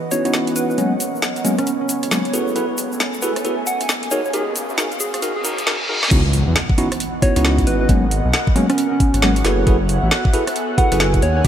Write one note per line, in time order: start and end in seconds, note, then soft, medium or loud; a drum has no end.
0.00 0.78 E3 medium
0.00 5.67 C#4 medium
0.00 0.78 B4 medium
0.00 5.67 C#5 medium
0.00 1.41 D#5 medium
0.00 2.93 F#5 medium
0.00 riser medium
0.11 0.22 B3 medium
0.11 0.22 C#4 medium
0.11 0.22 D#4 medium
0.11 0.22 E4 medium
0.11 0.22 F#4 medium
0.11 0.31 C#5 medium
0.11 open hi-hat loud
0.11 shaker medium
0.25 0.54 C#2 medium
0.25 0.76 B3 medium
0.25 0.76 C#4 medium
0.25 0.76 D#4 medium
0.25 0.76 E4 medium
0.25 0.76 F#4 medium
0.25 cross-stick soft
0.25 closed hi-hat medium
0.25 shaker soft
0.33 snare loud
0.33 shaker medium
0.47 closed hi-hat medium
0.56 0.75 G#1 medium
0.56 0.65 B4 medium
0.56 open hi-hat medium
0.56 shaker medium
0.70 0.75 B4 medium
0.70 shaker soft
0.78 0.90 G#1 loud
0.78 0.92 F#3 medium
0.78 0.92 G#3 medium
0.78 0.92 A#3 medium
0.78 4.11 B3 medium
0.78 0.92 B3 medium
0.78 0.92 C#4 medium
0.78 closed hi-hat medium
0.78 shaker soft
0.88 1.10 G#1 medium
0.88 2.33 A#4 medium
1.00 open hi-hat loud
1.00 shaker medium
1.14 1.21 B1 medium
1.14 shaker soft
1.22 snare loud
1.22 shaker medium
1.36 3.06 C#5 medium
1.36 closed hi-hat soft
1.36 shaker soft
1.45 1.54 F#3 medium
1.45 1.54 G#3 medium
1.45 1.54 A#3 medium
1.45 1.54 B3 medium
1.45 1.54 C#4 loud
1.45 open hi-hat medium
1.45 shaker medium
1.58 1.77 C#4 medium
1.58 cross-stick medium
1.58 closed hi-hat medium
1.58 shaker soft
1.67 closed hi-hat medium
1.67 shaker medium
1.81 2.39 C#4 medium
1.89 open hi-hat loud
1.89 shaker loud
2.03 2.31 G#1 medium
2.03 cross-stick soft
2.03 closed hi-hat medium
2.03 shaker soft
2.11 2.21 F#3 medium
2.11 2.21 G#3 medium
2.11 2.21 A#3 medium
2.11 2.21 B3 medium
2.11 2.21 C#4 medium
2.11 snare loud
2.11 shaker medium
2.25 closed hi-hat medium
2.33 2.53 F#1 loud
2.33 2.54 E4 medium
2.33 2.54 F#4 medium
2.33 2.54 G#4 medium
2.33 2.54 A4 medium
2.33 2.54 B4 medium
2.33 open hi-hat medium
2.33 shaker loud
2.48 shaker soft
2.56 2.67 F#1 loud
2.56 2.65 E4 medium
2.56 2.65 F#4 medium
2.56 2.65 G#4 medium
2.56 2.65 A4 medium
2.56 4.11 A4 medium
2.56 2.65 B4 medium
2.56 closed hi-hat medium
2.56 shaker soft
2.69 2.87 F#1 medium
2.69 5.67 G#5 medium
2.78 open hi-hat loud
2.78 shaker loud
2.92 2.99 A1 medium
2.92 shaker soft
3.00 snare loud
3.00 shaker medium
3.14 4.11 E5 medium
3.14 shaker soft
3.22 3.32 E4 medium
3.22 3.32 F#4 medium
3.22 3.32 G#4 medium
3.22 3.32 A4 medium
3.22 3.32 B4 medium
3.22 open hi-hat medium
3.22 shaker medium
3.36 cross-stick medium
3.36 closed hi-hat medium
3.36 shaker soft
3.45 3.54 E4 medium
3.45 3.54 F#4 medium
3.45 3.54 G#4 medium
3.45 3.54 A4 medium
3.45 3.54 B4 medium
3.45 closed hi-hat medium
3.45 shaker medium
3.67 3.87 F#5 medium
3.67 open hi-hat loud
3.67 shaker loud
3.81 4.09 F#1 medium
3.81 cross-stick soft
3.81 closed hi-hat medium
3.81 shaker soft
3.89 snare loud
3.89 shaker medium
4.03 closed hi-hat soft
4.11 4.31 D#2 medium
4.11 5.67 C#4 medium
4.11 4.21 D#4 medium
4.11 4.21 F#4 medium
4.11 4.21 G#4 medium
4.11 4.21 A#4 medium
4.11 4.20 C#5 medium
4.11 open hi-hat medium
4.11 shaker medium
4.25 4.31 C#5 medium
4.25 shaker soft
4.33 4.45 D#2 loud
4.33 4.43 D#4 medium
4.33 4.43 F#4 medium
4.33 4.43 G#4 medium
4.33 4.53 G#4 medium
4.33 4.43 A#4 medium
4.33 5.67 F5 medium
4.33 closed hi-hat medium
4.33 shaker medium
4.47 4.65 D#2 medium
4.53 5.67 F#4 medium
4.53 open hi-hat loud
4.53 shaker loud
4.69 4.77 F#2 medium
4.69 shaker soft
4.78 4.87 D#4 medium
4.78 4.87 F#4 medium
4.78 4.87 G#4 medium
4.78 4.87 A#4 medium
4.78 snare loud
4.78 shaker medium
4.92 closed hi-hat soft
4.92 shaker soft
5.00 5.09 G#4 medium
5.00 open hi-hat medium
5.00 shaker medium
5.14 5.20 G#4 medium
5.14 cross-stick medium
5.14 closed hi-hat medium
5.14 shaker soft
5.22 5.32 D#4 medium
5.22 5.32 F#4 medium
5.22 5.32 G#4 medium
5.22 5.32 A#4 medium
5.22 closed hi-hat medium
5.22 reverse cymbal medium
5.22 shaker medium
5.36 5.67 G#4 medium
5.45 5.54 D#4 medium
5.45 5.54 F#4 medium
5.45 5.54 G#4 medium
5.45 5.54 A#4 medium
5.45 open hi-hat loud
5.45 shaker loud
5.58 5.67 D#2 medium
5.58 cross-stick soft
5.58 closed hi-hat medium
5.58 shaker soft
5.67 5.76 D#4 medium
5.67 5.76 F#4 medium
5.67 5.76 G#4 medium
5.67 5.76 A#4 medium
5.67 snare loud
5.89 5.98 D#4 medium
5.89 5.98 F#4 medium
5.89 5.98 G#4 medium
5.89 5.98 A#4 medium
6.03 snare medium
6.11 6.23 C#2 loud
6.11 6.21 B3 medium
6.11 11.23 B3 medium
6.11 6.21 C#4 medium
6.11 6.21 D#4 medium
6.11 6.21 E4 medium
6.11 11.48 F#4 medium
6.11 6.21 F#4 medium
6.11 11.48 F#5 medium
6.11 kick loud
6.11 closed hi-hat medium
6.11 crash loud
6.11 impact medium
6.25 6.43 C#2 medium
6.33 open hi-hat loud
6.47 6.54 E2 medium
6.47 7.89 E3 medium
6.56 snare loud
6.70 kick loud
6.78 6.87 B3 medium
6.78 6.87 C#4 medium
6.78 6.87 D#4 medium
6.78 6.87 E4 medium
6.78 6.87 F#4 medium
6.78 open hi-hat loud
6.92 8.52 D#5 medium
6.92 10.17 F#5 medium
6.92 cross-stick medium
6.92 closed hi-hat medium
7.00 closed hi-hat medium
7.22 7.33 B3 medium
7.22 7.33 C#4 medium
7.22 7.33 D#4 medium
7.22 7.33 E4 medium
7.22 7.33 F#4 medium
7.22 7.42 C#5 medium
7.22 kick loud
7.22 open hi-hat loud
7.36 7.65 C#2 medium
7.36 7.87 B3 medium
7.36 7.87 C#4 medium
7.36 7.87 D#4 medium
7.36 7.87 E4 medium
7.36 7.87 F#4 medium
7.36 cross-stick soft
7.36 closed hi-hat medium
7.45 snare loud
7.58 kick medium
7.58 closed hi-hat medium
7.67 7.86 G#1 medium
7.67 7.76 B4 medium
7.67 open hi-hat loud
7.81 7.86 B4 medium
7.89 8.01 G#1 loud
7.89 8.04 F#3 medium
7.89 8.04 G#3 medium
7.89 8.04 A#3 medium
7.89 8.04 B3 medium
7.89 8.04 C#4 medium
7.89 kick loud
7.89 closed hi-hat medium
8.03 8.21 G#1 medium
8.03 9.45 A#4 loud
8.11 open hi-hat loud
8.25 8.32 B1 medium
8.34 snare loud
8.47 kick loud
8.56 8.65 F#3 loud
8.56 8.65 G#3 medium
8.56 8.65 A#3 medium
8.56 8.65 B3 medium
8.56 8.65 C#4 loud
8.56 open hi-hat loud
8.60 10.17 C#5 medium
8.70 8.88 C#4 medium
8.70 cross-stick medium
8.70 closed hi-hat medium
8.78 closed hi-hat medium
8.92 9.50 C#4 medium
9.00 kick loud
9.00 open hi-hat loud
9.14 9.43 G#1 medium
9.14 cross-stick soft
9.14 closed hi-hat medium
9.22 9.32 F#3 medium
9.22 9.32 G#3 medium
9.22 9.32 A#3 medium
9.22 9.32 B3 medium
9.22 9.32 C#4 medium
9.22 snare loud
9.36 closed hi-hat medium
9.45 9.64 F#1 medium
9.45 9.65 E4 medium
9.45 9.65 F#4 medium
9.45 9.65 G#4 medium
9.45 9.65 A4 medium
9.45 9.65 B4 medium
9.45 snare medium
9.45 open hi-hat loud
9.59 11.22 E5 medium
9.67 9.78 F#1 loud
9.67 9.76 E4 medium
9.67 9.76 F#4 medium
9.67 9.76 G#4 medium
9.67 9.76 A4 medium
9.67 11.22 A4 medium
9.67 9.76 B4 medium
9.67 kick loud
9.67 closed hi-hat medium
9.81 9.99 F#1 loud
9.89 open hi-hat loud
10.03 10.10 A1 medium
10.11 snare loud
10.25 11.48 G#5 medium
10.25 kick loud
10.33 10.43 E4 medium
10.33 10.43 F#4 medium
10.33 10.43 G#4 medium
10.33 10.43 A4 medium
10.33 10.43 B4 loud
10.33 open hi-hat medium
10.47 cross-stick medium
10.47 closed hi-hat medium
10.56 closed hi-hat medium
10.78 10.89 E4 medium
10.78 10.89 F#4 medium
10.78 10.89 G#4 medium
10.78 10.89 A4 medium
10.78 10.89 B4 medium
10.78 10.98 F#5 medium
10.78 kick loud
10.78 open hi-hat loud
10.92 11.20 F#1 medium
10.92 11.21 E4 medium
10.92 11.21 F#4 medium
10.92 11.21 G#4 medium
10.92 11.21 A4 medium
10.92 11.21 B4 medium
10.92 cross-stick soft
10.92 closed hi-hat medium
11.00 snare loud
11.14 kick medium
11.14 closed hi-hat medium
11.22 11.42 D#2 medium
11.22 11.48 C#4 medium
11.22 11.31 C#5 medium
11.22 open hi-hat medium
11.37 11.48 F#4 medium
11.37 11.42 C#5 medium
11.45 11.48 D#2 loud
11.45 11.48 F4 medium
11.45 kick loud
11.45 closed hi-hat medium